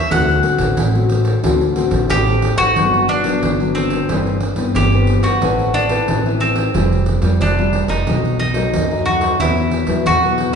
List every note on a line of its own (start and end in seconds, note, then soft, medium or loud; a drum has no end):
0.00 0.11 E5 medium
0.11 0.39 D2 loud
0.11 0.74 D3 medium
0.11 0.39 A3 medium
0.11 0.39 C4 medium
0.11 0.39 F#4 medium
0.11 2.06 F#5 medium
0.11 pandeiro medium
0.29 pandeiro soft
0.43 0.74 A3 medium
0.43 0.75 C4 soft
0.43 0.75 F#4 medium
0.43 pandeiro medium
0.58 0.74 A1 medium
0.58 pandeiro medium
0.77 1.34 A1 medium
0.77 1.40 A2 medium
0.77 pandeiro medium
0.95 1.39 A3 medium
0.95 1.39 C4 medium
0.95 1.39 F#4 medium
0.95 pandeiro soft
1.09 pandeiro medium
1.25 pandeiro medium
1.44 1.86 D2 medium
1.44 2.07 D3 medium
1.44 1.63 A3 medium
1.44 1.63 C4 medium
1.44 1.63 F#4 medium
1.44 pandeiro medium
1.61 pandeiro soft
1.76 2.21 A3 medium
1.76 2.21 C4 medium
1.76 2.21 F#4 medium
1.76 pandeiro medium
1.91 2.06 A1 loud
1.91 pandeiro medium
2.10 2.52 A1 medium
2.10 2.73 A2 medium
2.10 2.57 G4 loud
2.10 pandeiro medium
2.27 2.72 A3 medium
2.27 2.72 C4 medium
2.27 pandeiro soft
2.42 pandeiro medium
2.57 2.72 A1 medium
2.57 3.05 F#4 loud
2.57 pandeiro medium
2.76 3.33 G1 medium
2.76 3.39 G2 medium
2.76 3.21 F#3 medium
2.76 3.21 B3 medium
2.76 3.21 D4 medium
2.76 pandeiro medium
2.94 pandeiro soft
3.08 3.74 D4 medium
3.08 pandeiro medium
3.24 3.53 F#3 medium
3.24 3.53 B3 medium
3.24 3.54 D4 medium
3.24 pandeiro medium
3.42 3.99 G1 medium
3.42 4.06 D3 soft
3.42 pandeiro medium
3.60 4.04 F#3 medium
3.60 4.05 B3 medium
3.60 4.05 D4 medium
3.60 pandeiro soft
3.75 4.38 C4 medium
3.75 pandeiro medium
3.90 pandeiro medium
4.09 4.51 G1 medium
4.09 4.72 G2 medium
4.09 4.40 E3 medium
4.09 4.41 C4 medium
4.09 pandeiro medium
4.26 pandeiro soft
4.40 pandeiro medium
4.56 4.71 G2 medium
4.56 4.86 E3 medium
4.56 4.86 B3 medium
4.56 4.86 C4 medium
4.56 pandeiro medium
4.74 5.17 G1 medium
4.74 5.39 G2 soft
4.74 5.23 G4 medium
4.74 pandeiro medium
4.92 5.37 E3 medium
4.92 5.37 B3 soft
4.92 5.38 C4 medium
4.92 pandeiro soft
5.07 pandeiro medium
5.22 5.38 G2 medium
5.22 5.76 F#4 medium
5.22 pandeiro medium
5.41 5.98 A1 medium
5.41 6.05 A3 medium
5.41 5.86 C4 soft
5.41 5.87 E4 medium
5.41 5.87 B4 medium
5.41 pandeiro medium
5.59 pandeiro soft
5.74 6.40 D4 medium
5.74 pandeiro medium
5.89 6.19 C4 medium
5.89 6.19 E4 medium
5.89 6.19 B4 medium
5.89 pandeiro medium
6.08 6.64 A1 medium
6.08 6.71 E3 soft
6.08 pandeiro medium
6.26 6.70 C4 medium
6.26 6.70 E4 medium
6.26 6.70 B4 medium
6.26 pandeiro soft
6.40 7.03 C4 medium
6.40 pandeiro medium
6.55 pandeiro medium
6.74 7.17 F1 medium
6.74 7.37 F3 soft
6.74 7.19 G3 soft
6.74 7.19 C4 medium
6.74 7.19 F4 medium
6.74 pandeiro medium
6.92 pandeiro soft
7.06 pandeiro medium
7.22 7.37 F2 medium
7.22 7.51 G3 medium
7.22 7.51 C4 medium
7.22 7.51 F4 medium
7.22 pandeiro medium
7.41 7.83 F1 medium
7.41 8.04 C3 soft
7.41 7.92 D4 medium
7.41 pandeiro medium
7.58 8.02 G3 medium
7.58 8.02 C4 medium
7.58 8.03 F4 medium
7.58 pandeiro soft
7.73 pandeiro medium
7.88 8.03 F1 medium
7.88 8.36 D#4 medium
7.88 pandeiro medium
8.07 8.64 B1 medium
8.07 8.70 B2 medium
8.07 8.38 F#3 medium
8.07 8.39 A3 medium
8.07 8.39 D#4 medium
8.07 pandeiro medium
8.25 pandeiro soft
8.39 9.02 D#4 medium
8.39 pandeiro medium
8.54 8.84 F#3 medium
8.54 8.84 A3 medium
8.54 8.84 D#4 medium
8.54 pandeiro medium
8.73 9.30 D#2 medium
8.73 9.37 F#2 soft
8.73 pandeiro medium
8.91 9.35 F#3 medium
8.91 9.35 A3 medium
8.91 9.35 D#4 medium
8.91 pandeiro soft
9.06 9.40 F#4 medium
9.06 pandeiro medium
9.21 pandeiro medium
9.40 9.82 E2 medium
9.40 10.03 E3 soft
9.40 9.84 F#3 soft
9.40 9.85 B3 medium
9.40 10.06 E4 medium
9.40 9.85 E4 medium
9.40 pandeiro medium
9.57 pandeiro soft
9.71 pandeiro medium
9.87 10.02 E3 medium
9.87 10.17 F#3 medium
9.87 10.17 B3 medium
9.87 10.17 E4 medium
9.87 pandeiro medium
10.06 10.48 E2 medium
10.06 10.55 B2 medium
10.06 10.53 F#4 medium
10.06 pandeiro medium
10.23 10.55 F#3 soft
10.23 10.55 B3 medium
10.23 10.55 E4 medium
10.23 pandeiro soft
10.38 pandeiro medium